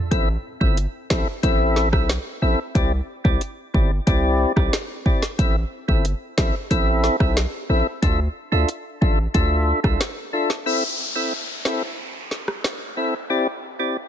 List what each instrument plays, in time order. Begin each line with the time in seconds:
0.11 808-style bass A1, tonewheel organ C4 E4 A4 E5, kick, closed hi-hat
0.61 808-style bass G1, tonewheel organ C4 E4 A4 E5, kick
0.77 closed hi-hat
1.10 808-style bass A1, tonewheel organ C4 E4 A4 E5, kick, snare
1.43 808-style bass A1, tonewheel organ C4 E4 A4 E5, kick, closed hi-hat
1.76 snare
1.92 808-style bass B1, tonewheel organ C4 E4 A4 E5, kick, cross-stick
2.09 snare, closed hi-hat
2.42 808-style bass A1, tonewheel organ C4 E4 A4 E5
2.75 808-style bass C2, tonewheel organ C4 E4 G4 D5, kick, closed hi-hat
3.24 808-style bass C2, tonewheel organ C4 E4 G4 D5, kick
3.41 closed hi-hat
3.74 808-style bass G1, tonewheel organ C4 E4 G4 D5, kick
4.07 808-style bass C2, tonewheel organ C4 E4 G4 D5, kick, closed hi-hat
4.56 808-style bass B1, tonewheel organ C4 E4 G4 D5, kick, cross-stick
4.73 snare, closed hi-hat
5.06 tonewheel organ C4 E4 G4 D5, kick
5.22 snare
5.39 808-style bass A1, tonewheel organ C4 E4 A4 E5, kick, closed hi-hat
5.88 808-style bass G1, tonewheel organ C4 E4 A4 E5, kick
6.05 closed hi-hat
6.38 808-style bass A1, tonewheel organ C4 E4 A4 E5, kick, snare
6.71 808-style bass A1, tonewheel organ C4 E4 A4 E5, kick, closed hi-hat
7.04 snare
7.20 808-style bass B1, tonewheel organ C4 E4 A4 E5, kick, cross-stick
7.37 snare, closed hi-hat
7.69 808-style bass A1, tonewheel organ C4 E4 A4 E5
8.02 808-style bass D2, tonewheel organ D4 F4 A4 E5, kick, closed hi-hat
8.52 808-style bass D2, tonewheel organ D4 F4 A4 E5
8.69 closed hi-hat
9.01 808-style bass A1, tonewheel organ D4 F4 A4 E5, kick
9.34 808-style bass D2, tonewheel organ D4 F4 A4 E5, kick, closed hi-hat
9.84 808-style bass C2, tonewheel organ D4 F4 A4 E5, kick, cross-stick
10.01 snare, closed hi-hat
10.33 tonewheel organ D4 F4 A4 E5
10.50 snare
10.66 tonewheel organ C4 E4 A4 E5, downlifter
11.15 tonewheel organ C4 E4 A4 E5
11.65 tonewheel organ C4 E4 A4 E5, snare
12.31 snare
12.48 cross-stick
12.64 snare
12.97 tonewheel organ C4 E4 A4 E5
13.30 tonewheel organ C4 E4 G4 D5
13.79 tonewheel organ C4 E4 G4 D5